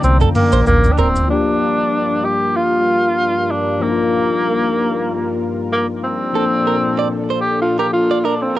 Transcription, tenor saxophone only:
0.04 C4
0.35 A#3
0.67 A#3
0.92 D4
0.98 C4
1.30 D4
2.25 G4
2.56 F4
3.51 D4
3.82 A#3
5.72 A#3
6.04 C4
7.40 G4
7.62 F4
7.79 G4
7.93 F4
8.25 D4
8.42 C4

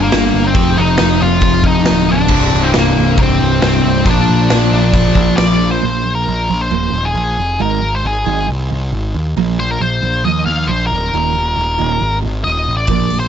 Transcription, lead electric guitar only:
0.03 A#3 A#4
0.47 C4 C5
0.78 D#4 D#5
1.22 F4 F5
1.66 D#4 D#5
2.12 D4 D5
2.63 C4 C5
2.79 A#3 A#4
3.21 C4 C5
3.63 C4 C5
4.10 D4 D5
5.37 D5
5.71 C5
6.15 A#4
6.61 C5
7.05 G#4
7.62 A#4
7.95 C5
8.07 G#4
9.60 C5
9.71 A#4
9.81 C5
10.25 D#5
10.46 F5
10.68 C5
10.87 A#4
12.44 D#5
12.77 D5
13.20 C5

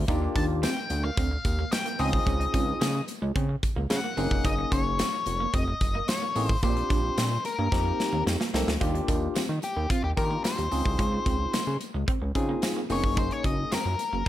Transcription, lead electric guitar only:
0.36 A5
0.64 G5
1.05 F5
1.73 G5
2.00 D#5
3.91 F#5
4.45 D#5
4.73 C#5
5.55 D#5
6.09 C#5
6.46 C5
6.64 C5
7.45 A#4
9.64 G4
9.91 F4
10.04 G4
10.17 A#4
10.44 C5
12.92 C#5
13.18 C5
13.32 C#5
13.45 D#5
13.72 A#4

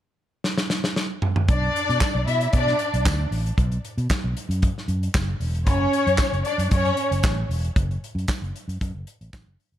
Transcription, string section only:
1.49 D4 D5
2.27 E4 E5
2.54 D4 D5
5.66 C#4 C#5
6.45 D4 D5
6.71 C#4 C#5

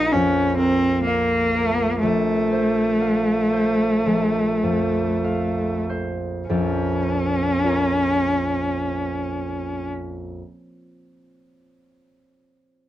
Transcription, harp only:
Already playing: A#1 A#4 F5
0.14 F2
0.59 A#4
1.07 F5
1.55 A#4
2.03 A#1
2.52 C5
3.02 F5
3.53 C5
4.06 A#1
4.63 F2
5.24 F5
5.89 C5
6.49 A#1 F2
7.64 F4 A#4 C#5

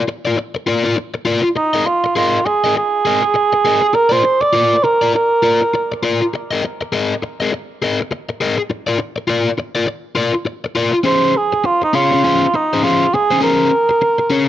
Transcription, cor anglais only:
1.56 D#4
1.86 F4
2.16 F4
2.46 G#4
2.77 G#4
3.94 A#4
4.12 C5
4.41 D5
4.84 A#4
5.15 A#4
11.05 C5
11.37 G#4
11.66 F4
11.84 D#4
11.95 F4
12.55 D#4
12.84 F4
13.14 G#4
13.43 A#4

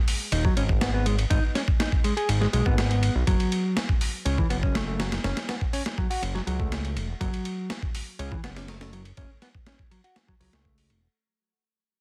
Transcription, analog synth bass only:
0.32 D#1
0.57 G#1
1.30 G#1
2.29 G#1
2.53 B1
2.66 G#1
3.15 B1
3.27 F#1
4.26 C#2
4.50 F#1
5.24 F#1
6.22 F#1
6.47 C#2
6.96 E1
7.21 F#1
8.19 C#2
8.43 F#1
9.17 F#1
10.40 C#2
10.53 C#2
10.90 E1

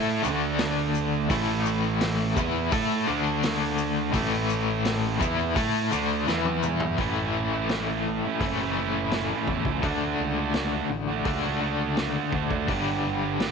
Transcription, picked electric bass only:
Already playing: A2
0.25 D2
1.30 A1
2.36 E2
2.72 A2
3.09 D2
4.14 A1
5.20 E2
5.56 A2
5.94 D2
6.28 E2
6.99 A1
8.40 F#1
9.48 E2
9.65 C#2
9.83 D2
10.20 C#2
10.90 A1
11.25 C#2
12.33 D2
12.50 D2
12.69 G1

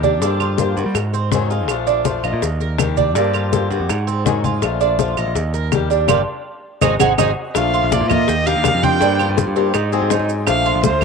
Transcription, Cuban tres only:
0.03 D4
0.22 D4
0.40 F4
0.77 F#4
1.14 C4
1.32 F#4
1.50 F4
1.87 D4
2.05 F4
2.24 D#5
2.60 A#4
2.97 D4
3.15 D4
3.33 F4
3.70 F#4
4.07 C4
4.26 F#4
4.44 F4
4.81 D4
4.99 F4
5.17 D#5
5.54 A#4
5.90 D4
6.08 D4 F4 G4
6.81 D#4 F#4 G#4
7.00 D#4 F#4 G#4
7.18 D#4 F#4 G#4
7.74 F4
8.10 A#4
8.28 G4
8.47 A#4
8.84 F4
9.02 D4
9.20 F4
9.56 C4
9.75 D#4
9.93 C4
10.11 D#4
10.66 F4

